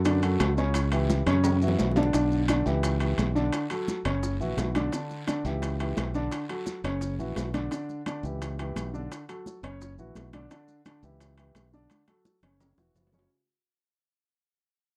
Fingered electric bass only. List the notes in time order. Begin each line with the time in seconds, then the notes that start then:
Already playing: F#2
0.40 C#2
1.26 F#2
1.79 B1
2.14 B1
2.66 C#2
3.18 B1
4.05 F#1
4.40 A#1
4.57 B1
5.45 C#2
5.97 B1
6.84 F#1
7.18 A#1
7.36 B1
8.23 C#2
8.76 B1
9.63 F#1
9.98 A#1
10.15 B1
11.03 C#2
11.55 B1
12.43 F#1
12.77 E1
12.95 F#1